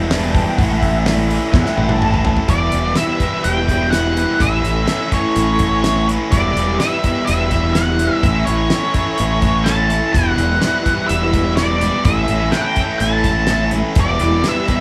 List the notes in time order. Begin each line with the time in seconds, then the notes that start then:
Already playing: E1 E3 G3 B3 E4
0.09 E2 B2 E3 G3 B3 E4 A5, snare, open hi-hat, low conga
0.26 G5
0.35 kick, open hi-hat, low conga
0.42 F#5
0.58 A1 A2 E3 A3 C#4 E4 E5, kick, open hi-hat
0.72 high conga
0.82 kick, open hi-hat, high conga
0.94 D5
1.06 E3 A3 C#4, snare, open hi-hat
1.10 E4
1.17 high conga
1.25 E4 E5
1.30 A3 C#4, open hi-hat, low conga
1.52 E2 E3 A3 C#4 E4 F#5, kick, snare, high conga
1.65 G5, snare, high conga
1.77 A1 A3 C#4 E4, high tom
1.81 A5
1.89 high tom
2.02 A2 E3 A3 C#4, mid tom
2.06 E4
2.14 mid tom
2.24 floor tom, low conga
2.37 floor tom
2.44 E4 G4 B4 E5
2.48 E1 E2 B2 E3 G3 B3 E4 D5, kick, closed hi-hat
2.72 E1 B3 E4, closed hi-hat
2.76 E3 G3
2.95 E3 G3 B3 E4 E5, snare, closed hi-hat
3.20 E2 B2 E3 G3 B3 E4, kick, closed hi-hat
3.44 E1 E3 G3 B3 E4 G5, closed hi-hat
3.68 E2 B2 E3 G3 B3 E4, kick, closed hi-hat
3.91 E3 G3 B3 F#5, snare, closed hi-hat
3.95 E4
4.15 E3 G3 B3 E4, closed hi-hat
4.38 A1 A2 E3 A3 C#4 E4 A4 C#5 E5, kick, closed hi-hat
4.62 A1 A3 C#4 E4, closed hi-hat
4.84 E3 A3 C#4 E4, snare, closed hi-hat
5.08 E3 A3 C#4 E4, kick, closed hi-hat
5.12 A2 C#5
5.34 A1 E3 A3 C#4 E4, closed hi-hat
5.58 A2 E3 A3 C#4 E4, kick, closed hi-hat
5.83 E3 A3 C#4 E4, snare, closed hi-hat
6.07 A3 C#4 E4, closed hi-hat
6.30 E1 E2 B2 E3 G3 B3 E4 B4 D5, kick, closed hi-hat
6.34 G4 E5
6.55 E1 E3 G3 B3 E4, closed hi-hat
6.79 E3 G3 B3 E4 E5, snare, closed hi-hat
7.02 E2 B2 E3 G3 B3 E4, kick, closed hi-hat
7.26 E1 E3 G3 B3 E4 E5, closed hi-hat
7.51 E2 B2 E3 G3 B3 E4, kick, closed hi-hat
7.73 E3 F#5, snare, closed hi-hat
7.78 G3 B3 E4
7.99 B3 E4, closed hi-hat
8.03 E3 G3
8.20 A1 A2 E5, kick, closed hi-hat
8.24 E3 A3 C#4 E4 A4 C#5
8.45 A1 E4 C#5, closed hi-hat
8.49 A3 C#4
8.70 E3 A3 C#4, snare, closed hi-hat
8.75 E4
8.94 A2 E3 A3 C#4 E4, kick, closed hi-hat
9.17 A1 E3 A3 C#4, closed hi-hat
9.21 E4
9.40 A2 E3 A3 C#4 E4, kick, closed hi-hat
9.64 E3 A3 C#4 E4 A5, snare, closed hi-hat
9.88 A3 C#4 E4, closed hi-hat
10.12 E1 E2 B2 E3 G3 B3 E4 G4 B4 E5 F#5, kick, closed hi-hat
10.35 E1 E3 G3 B3 E4, closed hi-hat
10.52 high conga
10.60 E3 G3 B3, snare, closed hi-hat
10.64 E4
10.83 E2 B2 E3 G3 B3 E4, kick, closed hi-hat, low conga
11.07 E1 E3 G3 B3 E4 E5, closed hi-hat
11.32 E2 B2 E3 G3 B3 E4, kick, closed hi-hat, high conga
11.56 E3 G3 B3 E4 D5, snare, closed hi-hat
11.81 E3 G3 B3 E4, closed hi-hat, high conga, low conga
12.05 A1 A2 E3 A3 C#4 E4 A4 C#5 E5, kick, closed hi-hat
12.09 E4
12.28 A1 C#4 E4, closed hi-hat
12.32 A3
12.42 high conga
12.52 E3 A3 G5, snare, closed hi-hat
12.56 C#4 E4
12.61 F#5 G5
12.76 E3 A3 C#4 E4, kick, closed hi-hat
12.81 A2
12.99 A1 E3 A3 C#4 A5, closed hi-hat
13.04 E4
13.24 E3 A3 C#4 E4, kick, closed hi-hat, high conga
13.28 A2
13.47 E3 A3 C#4, snare, closed hi-hat
13.51 E4
13.71 A3 C#4 E4, closed hi-hat, high conga, low conga
13.95 E1 E2 B2 E3 G3 B3 E4 G4 B4, kick, closed hi-hat
14.00 E4 D5
14.19 E1 B3 E4, closed hi-hat
14.23 E3 G3
14.31 high conga
14.44 E3 G3 B3 E4, snare, closed hi-hat
14.49 E5
14.67 E2 B2 E3 G3 B3 E4, kick, closed hi-hat, low conga